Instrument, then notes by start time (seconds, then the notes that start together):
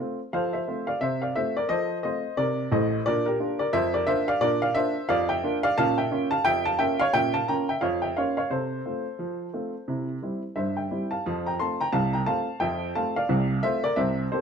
upright piano
0.00 A3 C4 F4
0.33 F3 A4 C5 F5
0.53 C5 E5
0.68 A3 C4 F4
0.87 D5 F5
1.01 C3 C5 E5
1.22 D5 F5
1.36 A3 C4 F4 C5 E5
1.57 A#4 D5
1.69 F3 A4 C5 D#5
2.03 A3 C4 F4 C5 D#5
2.37 C3 A#4 D5
2.72 A1 A2 C5 D#5
3.06 A#2 D4 A#4 D5
3.26 G4 A#4
3.40 A#3 D4 F4
3.59 A#4 D5
3.73 F2 C5 E5
3.94 A#4 D5
4.07 A#3 D4 F4 C5 E5
4.28 D5 F5
4.41 A#2 D4 A#4 D5
4.62 D5 F5
4.75 A#3 D4 F4 C5 E5
5.09 F2 D5 F5
5.29 E5 G5
5.43 A#3 D4 F4
5.63 D5 F5
5.78 A#2 C#4 F5 A5
5.98 E5 G5
6.11 A#3 C#4 F4
6.31 F5 A5
6.45 F2 E5 G5
6.65 F5 A5
6.79 A#3 C#4 F4 E5 G5
6.99 C#5 F5
7.13 A#2 C#4 E5 G5
7.34 F5 A5
7.48 A#3 C#4 F4 G5 A#5
7.69 E5 G5
7.81 F2 C#5 F5
8.02 E5 G5
8.17 A#3 C#4 F4 C#5 F5
8.37 C#5 F5
8.51 C3 A4 C5
8.86 A3 C4 F4
9.19 F3
9.53 A3 C4 F4
9.88 C3 E4
10.22 G3 C4 E4
10.56 G2 C5 E5
10.77 E5 G5
10.91 G3 C4 E4
11.11 F5 A5
11.26 F2 F3
11.46 G5 A#5
11.59 A3 C4 F4 A5 C6
11.81 G5 A#5
11.92 C2 C3 F5 A5
12.13 G5 A#5
12.26 A3 C4 F4 F5 A5
12.60 F2 F3 E5 G5
12.95 A3 C4 F4 F5 A5
13.16 D5 F5
13.29 C2 C3
13.63 A3 C4 F4 C5 E5
13.84 A#4 D5
13.96 C2 C3 C5 E5
14.32 A#3 C4 G4 A4 C5